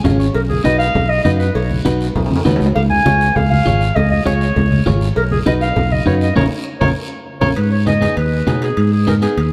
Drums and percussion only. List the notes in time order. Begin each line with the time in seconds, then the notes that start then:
0.05 high conga, low conga, low timbale, short guiro
0.20 high conga, short guiro
0.34 cowbell, long guiro
0.50 high conga
0.65 high conga, short guiro
0.80 short guiro
0.95 cowbell, high conga, low conga, long guiro
1.25 high conga, short guiro
1.40 high conga, short guiro
1.55 cowbell, long guiro
1.71 high conga
1.85 high conga, short guiro
2.01 short guiro
2.16 cowbell, high conga, low conga, high timbale, long guiro
2.26 high timbale
2.31 high conga
2.36 high timbale
2.45 high conga, low conga, low timbale, short guiro
2.56 low timbale
2.61 high conga, short guiro
2.66 low timbale
2.76 cowbell, long guiro
2.91 high conga
3.06 high conga, short guiro
3.21 short guiro
3.36 cowbell, high conga, low conga, long guiro
3.51 high conga
3.66 high conga, short guiro
3.81 high conga, short guiro
3.96 cowbell, low conga, long guiro
4.11 high conga
4.26 high conga, short guiro
4.41 short guiro
4.56 cowbell, high conga, low conga, long guiro
4.72 high conga
4.86 high conga, low conga, low timbale, short guiro
5.01 high conga, short guiro
5.16 cowbell, long guiro
5.31 high conga
5.46 high conga, short guiro
5.61 short guiro
5.76 cowbell, high conga, low conga, long guiro
5.92 high conga
6.06 high conga, short guiro
6.21 high conga, short guiro
6.36 high conga, high timbale, long guiro
6.81 high conga, high timbale, long guiro
7.41 high conga, high timbale, long guiro
7.56 high timbale, long guiro
7.87 high conga, high timbale, short guiro
8.02 high conga, high timbale, short guiro
8.17 high timbale, long guiro
8.47 high conga, high timbale, low timbale, short guiro
8.62 high timbale, short guiro
8.77 high timbale, long guiro
9.07 high conga, high timbale, short guiro
9.22 high timbale, short guiro
9.37 high timbale, long guiro